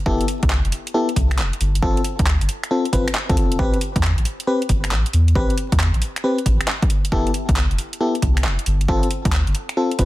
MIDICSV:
0, 0, Header, 1, 4, 480
1, 0, Start_track
1, 0, Key_signature, 0, "minor"
1, 0, Tempo, 441176
1, 67, Time_signature, 4, 2, 24, 8
1, 10934, End_track
2, 0, Start_track
2, 0, Title_t, "FM electric piano"
2, 0, Program_c, 0, 5
2, 66, Note_on_c, 0, 59, 95
2, 66, Note_on_c, 0, 64, 88
2, 66, Note_on_c, 0, 67, 85
2, 66, Note_on_c, 0, 69, 101
2, 268, Note_off_c, 0, 59, 0
2, 268, Note_off_c, 0, 64, 0
2, 268, Note_off_c, 0, 69, 0
2, 269, Note_off_c, 0, 67, 0
2, 1025, Note_on_c, 0, 59, 78
2, 1025, Note_on_c, 0, 67, 70
2, 1026, Note_on_c, 0, 64, 74
2, 1026, Note_on_c, 0, 69, 87
2, 1178, Note_off_c, 0, 59, 0
2, 1178, Note_off_c, 0, 64, 0
2, 1178, Note_off_c, 0, 67, 0
2, 1179, Note_off_c, 0, 69, 0
2, 1985, Note_on_c, 0, 69, 109
2, 1986, Note_on_c, 0, 60, 94
2, 1986, Note_on_c, 0, 65, 89
2, 2188, Note_off_c, 0, 60, 0
2, 2188, Note_off_c, 0, 69, 0
2, 2189, Note_off_c, 0, 65, 0
2, 2946, Note_on_c, 0, 60, 79
2, 2946, Note_on_c, 0, 65, 69
2, 2946, Note_on_c, 0, 69, 84
2, 3098, Note_off_c, 0, 60, 0
2, 3098, Note_off_c, 0, 69, 0
2, 3099, Note_off_c, 0, 65, 0
2, 3185, Note_on_c, 0, 60, 81
2, 3185, Note_on_c, 0, 65, 68
2, 3185, Note_on_c, 0, 71, 91
2, 3338, Note_off_c, 0, 60, 0
2, 3338, Note_off_c, 0, 65, 0
2, 3338, Note_off_c, 0, 71, 0
2, 3584, Note_on_c, 0, 60, 79
2, 3584, Note_on_c, 0, 65, 69
2, 3584, Note_on_c, 0, 69, 87
2, 3887, Note_off_c, 0, 60, 0
2, 3887, Note_off_c, 0, 65, 0
2, 3887, Note_off_c, 0, 69, 0
2, 3906, Note_on_c, 0, 60, 93
2, 3906, Note_on_c, 0, 67, 91
2, 3906, Note_on_c, 0, 71, 103
2, 4108, Note_off_c, 0, 60, 0
2, 4108, Note_off_c, 0, 67, 0
2, 4109, Note_off_c, 0, 71, 0
2, 4866, Note_on_c, 0, 60, 76
2, 4866, Note_on_c, 0, 67, 71
2, 4866, Note_on_c, 0, 71, 88
2, 5018, Note_off_c, 0, 71, 0
2, 5019, Note_off_c, 0, 60, 0
2, 5019, Note_off_c, 0, 67, 0
2, 5826, Note_on_c, 0, 60, 92
2, 5826, Note_on_c, 0, 67, 83
2, 5827, Note_on_c, 0, 71, 108
2, 6028, Note_off_c, 0, 60, 0
2, 6029, Note_off_c, 0, 67, 0
2, 6029, Note_off_c, 0, 71, 0
2, 6787, Note_on_c, 0, 60, 77
2, 6787, Note_on_c, 0, 67, 71
2, 6787, Note_on_c, 0, 71, 83
2, 6939, Note_off_c, 0, 60, 0
2, 6939, Note_off_c, 0, 67, 0
2, 6939, Note_off_c, 0, 71, 0
2, 7748, Note_on_c, 0, 67, 85
2, 7748, Note_on_c, 0, 69, 103
2, 7749, Note_on_c, 0, 59, 95
2, 7749, Note_on_c, 0, 64, 90
2, 7950, Note_off_c, 0, 59, 0
2, 7950, Note_off_c, 0, 64, 0
2, 7950, Note_off_c, 0, 67, 0
2, 7950, Note_off_c, 0, 69, 0
2, 8709, Note_on_c, 0, 59, 81
2, 8709, Note_on_c, 0, 64, 72
2, 8709, Note_on_c, 0, 67, 72
2, 8709, Note_on_c, 0, 69, 84
2, 8860, Note_off_c, 0, 59, 0
2, 8860, Note_off_c, 0, 64, 0
2, 8860, Note_off_c, 0, 67, 0
2, 8860, Note_off_c, 0, 69, 0
2, 9668, Note_on_c, 0, 65, 91
2, 9669, Note_on_c, 0, 60, 94
2, 9669, Note_on_c, 0, 69, 107
2, 9869, Note_off_c, 0, 65, 0
2, 9870, Note_off_c, 0, 60, 0
2, 9870, Note_off_c, 0, 69, 0
2, 10629, Note_on_c, 0, 60, 77
2, 10629, Note_on_c, 0, 65, 75
2, 10629, Note_on_c, 0, 69, 86
2, 10780, Note_off_c, 0, 60, 0
2, 10780, Note_off_c, 0, 65, 0
2, 10780, Note_off_c, 0, 69, 0
2, 10868, Note_on_c, 0, 60, 81
2, 10868, Note_on_c, 0, 65, 73
2, 10869, Note_on_c, 0, 71, 85
2, 10934, Note_off_c, 0, 60, 0
2, 10934, Note_off_c, 0, 65, 0
2, 10934, Note_off_c, 0, 71, 0
2, 10934, End_track
3, 0, Start_track
3, 0, Title_t, "Sub bass"
3, 0, Program_c, 1, 38
3, 65, Note_on_c, 1, 29, 98
3, 203, Note_off_c, 1, 29, 0
3, 464, Note_on_c, 1, 36, 94
3, 661, Note_off_c, 1, 36, 0
3, 707, Note_on_c, 1, 29, 78
3, 776, Note_off_c, 1, 29, 0
3, 1266, Note_on_c, 1, 36, 105
3, 1508, Note_on_c, 1, 29, 76
3, 1525, Note_off_c, 1, 36, 0
3, 1645, Note_off_c, 1, 29, 0
3, 1746, Note_on_c, 1, 31, 84
3, 1964, Note_off_c, 1, 31, 0
3, 1986, Note_on_c, 1, 31, 94
3, 2123, Note_off_c, 1, 31, 0
3, 2386, Note_on_c, 1, 38, 92
3, 2582, Note_off_c, 1, 38, 0
3, 2625, Note_on_c, 1, 31, 79
3, 2695, Note_off_c, 1, 31, 0
3, 3187, Note_on_c, 1, 31, 96
3, 3324, Note_off_c, 1, 31, 0
3, 3586, Note_on_c, 1, 38, 81
3, 3665, Note_on_c, 1, 29, 93
3, 3681, Note_off_c, 1, 38, 0
3, 3884, Note_off_c, 1, 29, 0
3, 3906, Note_on_c, 1, 33, 96
3, 4044, Note_off_c, 1, 33, 0
3, 4305, Note_on_c, 1, 40, 90
3, 4501, Note_off_c, 1, 40, 0
3, 4542, Note_on_c, 1, 33, 78
3, 4614, Note_off_c, 1, 33, 0
3, 5105, Note_on_c, 1, 31, 110
3, 5347, Note_on_c, 1, 33, 83
3, 5363, Note_off_c, 1, 31, 0
3, 5484, Note_off_c, 1, 33, 0
3, 5587, Note_on_c, 1, 40, 87
3, 5804, Note_off_c, 1, 40, 0
3, 5826, Note_on_c, 1, 33, 100
3, 5963, Note_off_c, 1, 33, 0
3, 6225, Note_on_c, 1, 40, 92
3, 6421, Note_off_c, 1, 40, 0
3, 6465, Note_on_c, 1, 33, 74
3, 6535, Note_off_c, 1, 33, 0
3, 7027, Note_on_c, 1, 33, 98
3, 7164, Note_off_c, 1, 33, 0
3, 7747, Note_on_c, 1, 29, 94
3, 7884, Note_off_c, 1, 29, 0
3, 8145, Note_on_c, 1, 36, 91
3, 8341, Note_off_c, 1, 36, 0
3, 8387, Note_on_c, 1, 29, 83
3, 8456, Note_off_c, 1, 29, 0
3, 8948, Note_on_c, 1, 36, 99
3, 9190, Note_on_c, 1, 29, 80
3, 9206, Note_off_c, 1, 36, 0
3, 9325, Note_off_c, 1, 29, 0
3, 9429, Note_on_c, 1, 31, 85
3, 9645, Note_off_c, 1, 31, 0
3, 9667, Note_on_c, 1, 31, 100
3, 9804, Note_off_c, 1, 31, 0
3, 10065, Note_on_c, 1, 38, 93
3, 10261, Note_off_c, 1, 38, 0
3, 10307, Note_on_c, 1, 31, 77
3, 10376, Note_off_c, 1, 31, 0
3, 10867, Note_on_c, 1, 31, 94
3, 10934, Note_off_c, 1, 31, 0
3, 10934, End_track
4, 0, Start_track
4, 0, Title_t, "Drums"
4, 66, Note_on_c, 9, 36, 108
4, 175, Note_off_c, 9, 36, 0
4, 224, Note_on_c, 9, 42, 55
4, 306, Note_on_c, 9, 46, 105
4, 333, Note_off_c, 9, 42, 0
4, 414, Note_off_c, 9, 46, 0
4, 464, Note_on_c, 9, 42, 70
4, 465, Note_on_c, 9, 36, 94
4, 545, Note_on_c, 9, 39, 106
4, 573, Note_off_c, 9, 42, 0
4, 574, Note_off_c, 9, 36, 0
4, 654, Note_off_c, 9, 39, 0
4, 705, Note_on_c, 9, 42, 37
4, 785, Note_on_c, 9, 46, 109
4, 814, Note_off_c, 9, 42, 0
4, 894, Note_off_c, 9, 46, 0
4, 945, Note_on_c, 9, 42, 65
4, 1054, Note_off_c, 9, 42, 0
4, 1185, Note_on_c, 9, 42, 38
4, 1266, Note_on_c, 9, 36, 58
4, 1267, Note_on_c, 9, 46, 105
4, 1294, Note_off_c, 9, 42, 0
4, 1375, Note_off_c, 9, 36, 0
4, 1376, Note_off_c, 9, 46, 0
4, 1427, Note_on_c, 9, 26, 68
4, 1427, Note_on_c, 9, 46, 62
4, 1508, Note_on_c, 9, 39, 103
4, 1536, Note_off_c, 9, 26, 0
4, 1536, Note_off_c, 9, 46, 0
4, 1617, Note_off_c, 9, 39, 0
4, 1669, Note_on_c, 9, 42, 53
4, 1749, Note_on_c, 9, 46, 106
4, 1777, Note_off_c, 9, 42, 0
4, 1857, Note_off_c, 9, 46, 0
4, 1908, Note_on_c, 9, 42, 69
4, 1986, Note_on_c, 9, 36, 114
4, 2017, Note_off_c, 9, 42, 0
4, 2095, Note_off_c, 9, 36, 0
4, 2146, Note_on_c, 9, 42, 56
4, 2224, Note_on_c, 9, 46, 111
4, 2255, Note_off_c, 9, 42, 0
4, 2333, Note_off_c, 9, 46, 0
4, 2384, Note_on_c, 9, 42, 68
4, 2386, Note_on_c, 9, 36, 102
4, 2464, Note_on_c, 9, 39, 104
4, 2493, Note_off_c, 9, 42, 0
4, 2494, Note_off_c, 9, 36, 0
4, 2573, Note_off_c, 9, 39, 0
4, 2625, Note_on_c, 9, 46, 65
4, 2705, Note_off_c, 9, 46, 0
4, 2705, Note_on_c, 9, 46, 115
4, 2814, Note_off_c, 9, 46, 0
4, 2866, Note_on_c, 9, 26, 52
4, 2866, Note_on_c, 9, 42, 69
4, 2975, Note_off_c, 9, 26, 0
4, 2975, Note_off_c, 9, 42, 0
4, 3106, Note_on_c, 9, 42, 36
4, 3187, Note_on_c, 9, 36, 57
4, 3187, Note_on_c, 9, 46, 105
4, 3214, Note_off_c, 9, 42, 0
4, 3295, Note_off_c, 9, 36, 0
4, 3296, Note_off_c, 9, 46, 0
4, 3347, Note_on_c, 9, 26, 67
4, 3347, Note_on_c, 9, 42, 72
4, 3426, Note_on_c, 9, 39, 106
4, 3456, Note_off_c, 9, 26, 0
4, 3456, Note_off_c, 9, 42, 0
4, 3535, Note_off_c, 9, 39, 0
4, 3586, Note_on_c, 9, 36, 101
4, 3587, Note_on_c, 9, 42, 50
4, 3668, Note_on_c, 9, 46, 107
4, 3695, Note_off_c, 9, 36, 0
4, 3696, Note_off_c, 9, 42, 0
4, 3777, Note_off_c, 9, 46, 0
4, 3827, Note_on_c, 9, 42, 69
4, 3907, Note_on_c, 9, 36, 119
4, 3935, Note_off_c, 9, 42, 0
4, 4015, Note_off_c, 9, 36, 0
4, 4065, Note_on_c, 9, 42, 53
4, 4147, Note_on_c, 9, 46, 116
4, 4174, Note_off_c, 9, 42, 0
4, 4256, Note_off_c, 9, 46, 0
4, 4306, Note_on_c, 9, 36, 97
4, 4307, Note_on_c, 9, 42, 65
4, 4387, Note_on_c, 9, 39, 111
4, 4414, Note_off_c, 9, 36, 0
4, 4416, Note_off_c, 9, 42, 0
4, 4496, Note_off_c, 9, 39, 0
4, 4547, Note_on_c, 9, 42, 35
4, 4627, Note_on_c, 9, 46, 109
4, 4656, Note_off_c, 9, 42, 0
4, 4735, Note_off_c, 9, 46, 0
4, 4786, Note_on_c, 9, 42, 66
4, 4895, Note_off_c, 9, 42, 0
4, 5026, Note_on_c, 9, 42, 35
4, 5105, Note_on_c, 9, 46, 108
4, 5106, Note_on_c, 9, 36, 64
4, 5135, Note_off_c, 9, 42, 0
4, 5214, Note_off_c, 9, 46, 0
4, 5215, Note_off_c, 9, 36, 0
4, 5264, Note_on_c, 9, 26, 72
4, 5264, Note_on_c, 9, 46, 64
4, 5346, Note_on_c, 9, 39, 104
4, 5373, Note_off_c, 9, 26, 0
4, 5373, Note_off_c, 9, 46, 0
4, 5455, Note_off_c, 9, 39, 0
4, 5506, Note_on_c, 9, 42, 50
4, 5587, Note_on_c, 9, 46, 101
4, 5615, Note_off_c, 9, 42, 0
4, 5696, Note_off_c, 9, 46, 0
4, 5745, Note_on_c, 9, 42, 62
4, 5826, Note_on_c, 9, 36, 113
4, 5854, Note_off_c, 9, 42, 0
4, 5935, Note_off_c, 9, 36, 0
4, 5985, Note_on_c, 9, 42, 52
4, 6066, Note_on_c, 9, 46, 107
4, 6093, Note_off_c, 9, 42, 0
4, 6175, Note_off_c, 9, 46, 0
4, 6225, Note_on_c, 9, 42, 66
4, 6226, Note_on_c, 9, 36, 100
4, 6307, Note_on_c, 9, 39, 118
4, 6334, Note_off_c, 9, 36, 0
4, 6334, Note_off_c, 9, 42, 0
4, 6416, Note_off_c, 9, 39, 0
4, 6464, Note_on_c, 9, 42, 35
4, 6545, Note_on_c, 9, 46, 105
4, 6573, Note_off_c, 9, 42, 0
4, 6654, Note_off_c, 9, 46, 0
4, 6705, Note_on_c, 9, 26, 51
4, 6705, Note_on_c, 9, 42, 65
4, 6814, Note_off_c, 9, 26, 0
4, 6814, Note_off_c, 9, 42, 0
4, 6946, Note_on_c, 9, 42, 36
4, 7027, Note_on_c, 9, 36, 64
4, 7028, Note_on_c, 9, 46, 109
4, 7055, Note_off_c, 9, 42, 0
4, 7136, Note_off_c, 9, 36, 0
4, 7136, Note_off_c, 9, 46, 0
4, 7188, Note_on_c, 9, 26, 72
4, 7188, Note_on_c, 9, 42, 62
4, 7267, Note_on_c, 9, 39, 112
4, 7296, Note_off_c, 9, 26, 0
4, 7296, Note_off_c, 9, 42, 0
4, 7376, Note_off_c, 9, 39, 0
4, 7426, Note_on_c, 9, 36, 106
4, 7428, Note_on_c, 9, 42, 50
4, 7508, Note_on_c, 9, 46, 104
4, 7535, Note_off_c, 9, 36, 0
4, 7537, Note_off_c, 9, 42, 0
4, 7616, Note_off_c, 9, 46, 0
4, 7668, Note_on_c, 9, 42, 66
4, 7747, Note_on_c, 9, 36, 123
4, 7777, Note_off_c, 9, 42, 0
4, 7856, Note_off_c, 9, 36, 0
4, 7907, Note_on_c, 9, 42, 50
4, 7988, Note_on_c, 9, 46, 104
4, 8016, Note_off_c, 9, 42, 0
4, 8096, Note_off_c, 9, 46, 0
4, 8146, Note_on_c, 9, 36, 107
4, 8148, Note_on_c, 9, 42, 64
4, 8227, Note_on_c, 9, 39, 121
4, 8255, Note_off_c, 9, 36, 0
4, 8257, Note_off_c, 9, 42, 0
4, 8336, Note_off_c, 9, 39, 0
4, 8388, Note_on_c, 9, 42, 33
4, 8469, Note_on_c, 9, 46, 99
4, 8497, Note_off_c, 9, 42, 0
4, 8578, Note_off_c, 9, 46, 0
4, 8627, Note_on_c, 9, 42, 63
4, 8736, Note_off_c, 9, 42, 0
4, 8867, Note_on_c, 9, 42, 35
4, 8948, Note_on_c, 9, 36, 63
4, 8948, Note_on_c, 9, 46, 103
4, 8976, Note_off_c, 9, 42, 0
4, 9057, Note_off_c, 9, 36, 0
4, 9057, Note_off_c, 9, 46, 0
4, 9106, Note_on_c, 9, 26, 69
4, 9106, Note_on_c, 9, 46, 60
4, 9187, Note_on_c, 9, 39, 112
4, 9215, Note_off_c, 9, 26, 0
4, 9215, Note_off_c, 9, 46, 0
4, 9295, Note_off_c, 9, 39, 0
4, 9345, Note_on_c, 9, 42, 49
4, 9425, Note_on_c, 9, 46, 103
4, 9454, Note_off_c, 9, 42, 0
4, 9534, Note_off_c, 9, 46, 0
4, 9586, Note_on_c, 9, 42, 60
4, 9667, Note_on_c, 9, 36, 117
4, 9695, Note_off_c, 9, 42, 0
4, 9776, Note_off_c, 9, 36, 0
4, 9825, Note_on_c, 9, 42, 52
4, 9907, Note_on_c, 9, 46, 102
4, 9934, Note_off_c, 9, 42, 0
4, 10016, Note_off_c, 9, 46, 0
4, 10066, Note_on_c, 9, 36, 110
4, 10066, Note_on_c, 9, 42, 66
4, 10145, Note_on_c, 9, 39, 117
4, 10175, Note_off_c, 9, 36, 0
4, 10175, Note_off_c, 9, 42, 0
4, 10254, Note_off_c, 9, 39, 0
4, 10306, Note_on_c, 9, 42, 35
4, 10385, Note_on_c, 9, 46, 100
4, 10414, Note_off_c, 9, 42, 0
4, 10494, Note_off_c, 9, 46, 0
4, 10544, Note_on_c, 9, 26, 49
4, 10544, Note_on_c, 9, 42, 63
4, 10653, Note_off_c, 9, 26, 0
4, 10653, Note_off_c, 9, 42, 0
4, 10787, Note_on_c, 9, 42, 35
4, 10866, Note_on_c, 9, 46, 96
4, 10867, Note_on_c, 9, 36, 63
4, 10895, Note_off_c, 9, 42, 0
4, 10934, Note_off_c, 9, 36, 0
4, 10934, Note_off_c, 9, 46, 0
4, 10934, End_track
0, 0, End_of_file